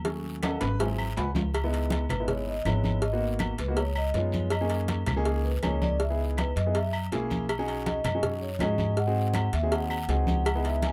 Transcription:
Already playing: D#2
0.05 F#3 A3 C#4, cowbell, high conga, long guiro
0.24 high conga
0.43 A4 D#5 F#5 A5, cowbell, high conga, high timbale, low agogo, short guiro, claves
0.61 G#1 B4 B5, cowbell, high conga, high timbale, short guiro
0.79 E3 F#3 C4 G#4 C5 E5 G#5, cowbell, high conga, low timbale, low agogo, long guiro
0.98 high conga, low agogo, claves
1.17 C#2 B4 F#5 G#5 B5, cowbell, high conga, low timbale, short guiro
1.35 high conga, low timbale, low agogo, short guiro
1.54 cowbell, high conga, low agogo, long guiro, claves
1.64 G#3 B3 D#4 E4
1.73 cowbell, high conga, low agogo
1.90 cowbell, high conga, low agogo, short guiro
2.09 G#1 B4, cowbell, high conga, low conga, low agogo, short guiro, claves
2.20 G#3 B3 D#4 E4
2.28 C#5, cowbell, high conga, low conga, long guiro
2.47 D#5, high conga
2.65 G#1 G#3 B3 D#4 E4 C#5, cowbell, high conga, low agogo, short guiro, claves
2.84 high conga, low agogo, short guiro
3.02 D#5, cowbell, high conga, long guiro
3.13 A#3 B3 D#4 F#4
3.21 high conga
3.39 cowbell, high conga, low agogo, short guiro, claves
3.58 C#2 B4, cowbell, high conga, short guiro
3.68 A#3 B3 D#4 F#4
3.76 C#5, cowbell, high conga, low agogo, long guiro
3.96 D#5, high conga, low agogo, claves
4.14 F#2 G#3 B3 D#4 F4 C#5, cowbell, high conga, short guiro
4.32 high conga, low agogo, short guiro
4.50 D#5, cowbell, high conga, low agogo, long guiro, claves
4.61 A#3 C#4 D#4 G#4
4.70 cowbell, high conga, low agogo
4.88 cowbell, high conga, low agogo, short guiro
5.06 C#2, cowbell, high conga, low conga, low agogo, short guiro, claves
5.16 A#3 C#4 D#4 G#4
5.25 cowbell, high conga, long guiro
5.44 B4, high conga
5.63 C#2 A#3 C#4 D#4 G#4 C#5, cowbell, high conga, low timbale, low agogo, short guiro, claves
5.82 D5, high conga, low agogo, short guiro
6.00 E5, cowbell, high conga, long guiro
6.10 B3 D#4 E4 G#4
6.20 G#4, high conga
6.37 B4, cowbell, high conga, low agogo, short guiro, claves
6.56 F#2 D#5, cowbell, high conga, short guiro
6.66 B3 D#4 E4 G#4
6.75 E5, cowbell, high conga, low agogo, long guiro
6.93 high conga, low agogo, claves
7.12 B1 A#3 C#4 E4 G#4, cowbell, high conga, low timbale, short guiro
7.30 high conga, low agogo, short guiro
7.49 cowbell, low agogo, long guiro, claves
7.59 C#4 D#4 F#4 G#4
7.68 cowbell, high conga, low agogo
7.86 D#5, cowbell, high conga, low agogo, short guiro
8.04 F#2, cowbell, high conga, low conga, low agogo, short guiro, claves
8.15 C#4 D#4 F#4 G#4
8.23 cowbell, high conga, low conga, long guiro
8.41 C#5, high conga
8.59 G#2 C#4 D#4 F#4 G#4 D#5, cowbell, high conga, low timbale, low agogo, short guiro, claves
8.78 high conga, low agogo, short guiro
8.96 F#5, cowbell, high conga, long guiro
9.07 C4 D#4 F#4 G#4
9.15 high conga
9.34 cowbell, high conga, low agogo, short guiro, claves
9.53 D#2 E5, cowbell, high conga, short guiro
9.63 C4 D#4 F#4 G#4
9.72 F#5, cowbell, high conga, low agogo, long guiro
9.90 high conga, low agogo, claves
10.08 C#2 C4 D#4 F#4 G#4 F#5, cowbell, high conga, low timbale, short guiro
10.27 high conga, low agogo, short guiro
10.45 cowbell, high conga, low agogo, long guiro, claves
10.55 B3 D#4 E4 G#4
10.64 E5, cowbell, high conga, low agogo
10.82 G#5, cowbell, high conga, low agogo, short guiro

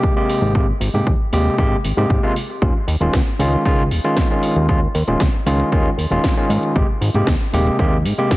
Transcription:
Already playing: C3 G#3 A#3 G4
0.03 kick
0.16 C3 G#3 A#3 G4
0.29 open hi-hat
0.42 G#1
0.55 C3 G#3 A#3 G4, kick
0.80 G#1, open hi-hat
0.93 G#2 C3 G#3 A#3 G4
1.07 D#2, kick
1.32 D#1 C3 G#3 A#3 G4, open hi-hat
1.58 G#1 C3 G#3 A#3 G4, kick
1.84 G#1, open hi-hat
1.97 G#2 C3 G#3 A#3 G4
2.10 G#2, kick
2.23 C3 G#3 A#3 F4
2.36 open hi-hat
2.62 D#2 D#3 G#3 C#4 F4, kick, closed hi-hat
2.88 D#2, open hi-hat
3.00 D#1 D#3 G#3 C#4 F4, closed hi-hat
3.13 C#2, kick, snare, closed hi-hat
3.39 C#2 D#3 G#3 C#4 F4, open hi-hat
3.53 closed hi-hat
3.65 C#2 D#3 G#3 C#4 F4, kick, closed hi-hat
3.91 D#1, open hi-hat
4.04 D#3 G#3 C#4 F4, closed hi-hat
4.17 kick, snare, closed hi-hat
4.30 D#3 G#3 C#4 F4
4.43 open hi-hat
4.56 D#2, closed hi-hat
4.68 D#3 G#3 C#4 F4, kick, closed hi-hat
4.95 D#2, open hi-hat
5.08 D#1 D#3 G#3 C#4 F4, closed hi-hat
5.20 C#2, kick, snare, closed hi-hat
5.46 C#2 D#3 G#3 C#4 F4, open hi-hat
5.60 closed hi-hat
5.72 D#2 D#3 G#3 C#4 F4, kick, closed hi-hat
5.97 D#2, open hi-hat
6.11 D#1 D#3 G#3 C#4 F4, closed hi-hat
6.24 kick, snare, closed hi-hat
6.37 D#3 G#3 C#4 F4
6.50 G#2, open hi-hat
6.63 closed hi-hat
6.75 G#1 C3 G#3 A#3 G4, kick, closed hi-hat
7.01 G#1, open hi-hat
7.14 G#2 C3 G#3 A#3 G4, closed hi-hat
7.27 D#2, kick, snare, closed hi-hat
7.53 D#1 C3 G#3 A#3 G4, open hi-hat
7.67 closed hi-hat
7.79 D#2 C3 G#3 A#3 G4, kick, closed hi-hat
8.05 G#2, open hi-hat
8.18 C3 G#3 A#3 G4, closed hi-hat
8.31 kick, snare, closed hi-hat

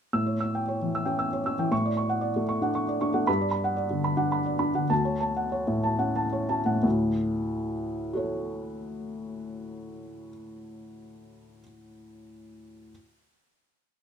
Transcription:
0.13 A2 E6
0.26 C#5
0.41 E6
0.55 G5
0.68 C#5
0.82 E3
0.95 E6
1.05 C#4 G5
1.19 E6
1.33 C#5
1.46 C#4 E6
1.58 E3 G5
1.71 A2 C#6
1.86 D5
1.97 C#6
2.09 F#5
2.21 D5
2.36 A3
2.49 C#6
2.62 D4 F#5
2.75 C#6
2.89 D5
3.01 D4 C#6
3.14 A3 F#5
3.27 G2 B5
3.41 D5
3.51 B5
3.64 F#5
3.76 D5
3.91 D3
4.04 B5
4.17 D4 F#5
4.32 B5
4.46 D5
4.59 D4 B5
4.75 D3 F#5
4.90 D2 A5
5.05 C#5
5.20 A5
5.37 F#5
5.52 C#5
5.67 A2
5.84 A5
5.98 C#4 F#5
6.16 A5
6.33 C#5
6.49 C#4 A5
6.66 A2 F#5
6.83 D2 A2
8.13 F#4 A4 C#5

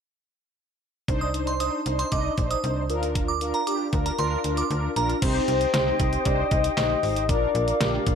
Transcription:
1.08 C2 D4 D#4 C5, kick, closed hi-hat
1.21 D#6
1.34 D4 D#4 C5, closed hi-hat
1.47 C6, closed hi-hat
1.60 D4 D#4 C5 D#6, closed hi-hat
1.86 C2 D4 D#4 C5, closed hi-hat
1.99 C6, closed hi-hat
2.12 C2 D4 D#4 D#5 D6, kick, closed hi-hat
2.38 A#1 D4 D#4 C5, kick, closed hi-hat
2.51 D#6, closed hi-hat
2.64 C2 D4 D#4 C5, closed hi-hat
2.90 D2 D4 F4 A#4, closed hi-hat
3.03 closed hi-hat
3.15 kick, closed hi-hat
3.28 D6
3.41 D4 F4 A#4, closed hi-hat
3.54 A#5, closed hi-hat
3.67 D4 F4 G4 D6, closed hi-hat
3.93 D2 D4 F4 A#4, kick, closed hi-hat
4.06 A#5, closed hi-hat
4.18 D2 D4 F4 A#4 C6, closed hi-hat
4.44 D2 D4 F4 A#4, closed hi-hat
4.57 D6, closed hi-hat
4.70 D2 D4 F4 A#4, closed hi-hat
4.96 A#1 D4 F4 A#4 A#5, closed hi-hat
5.10 closed hi-hat
5.22 C2 D#4 G4 C5 D#5 G5 D#6, kick, closed hi-hat, crash
5.48 C2 D#4 G4 C5, closed hi-hat
5.61 closed hi-hat
5.74 C2 D#4 G4 C5, snare, closed hi-hat
6.00 C2 D#4 G4 C5, kick, closed hi-hat
6.13 closed hi-hat
6.25 C2 D#4 G4 C5 D5, kick, closed hi-hat
6.51 C2 D#4 G4 C5 D#5, kick, closed hi-hat
6.64 closed hi-hat
6.77 A#1 D#4 G4 C5 D#5, snare, clap, closed hi-hat
7.03 G#1 D#4 G4 C5, open hi-hat
7.16 closed hi-hat
7.29 A#1 D4 F4 A#4 D5 F5 D6, kick, closed hi-hat
7.55 A#1 D4 F4 A#4, closed hi-hat
7.68 closed hi-hat
7.81 A#1 D4 F4 G4 A#4, snare, closed hi-hat
8.06 A#1 D4 F4 A#4, kick, closed hi-hat

